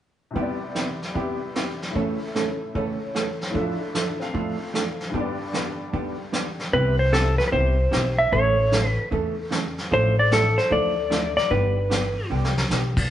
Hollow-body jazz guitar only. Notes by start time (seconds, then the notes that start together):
0.35 C3 G3 B3 E4 G4
0.75 C3 G3 B3 E4 G4
1.15 C3 G3 B3 E4 G4
1.55 C3 G3 B3 E4 G4
1.95 A2 C#3 E3 A3 C#4 A4
2.35 A2 C#3 E3 A3 C#4 A4
2.75 A2 C#3 E3 A3 C#4 A4
3.15 A2 C#3 E3 A3 C#4 A4
3.54 A2 F3 A3 D4 E4 A4
3.94 A2 F3 A3 D4 E4 A4
4.34 A2 F3 A3 D4 E4 A4
4.74 A2 F3 A3 D4 E4 A4
5.14 G2 D3 G3 B3 D4 G4
5.53 G2 D3 G3 B3 D4 G4
5.93 G2 D3 G3 B3 D4 G4
6.33 G2 D3 G3 B3 D4 G4
6.73 C3 G3 B3 E4 G4
7.12 C3 G3 B3 E4 G4
7.52 C3 G3 B3 E4 G4
7.91 C3 G3 B3 E4 G4
8.32 C#3 E3 A3 C#4 A4
8.72 C#3 E3 A3 C#4 A4
9.11 C#3 E3 A3 C#4 A4
9.51 C#3 E3 A3 C#4 A4
9.91 F3 A3 D4 E4 A4
10.31 F3 A3 D4 E4 A4
10.70 F3 A3 D4 E4 A4
11.10 F3 A3 D4 E4 A4
11.50 D3 G3 B3 D4 G4
11.90 D3 G3 B3 D4 G4
12.30 D3 G3 B3 D4 G4
12.70 D3 G3 B3 D4 G4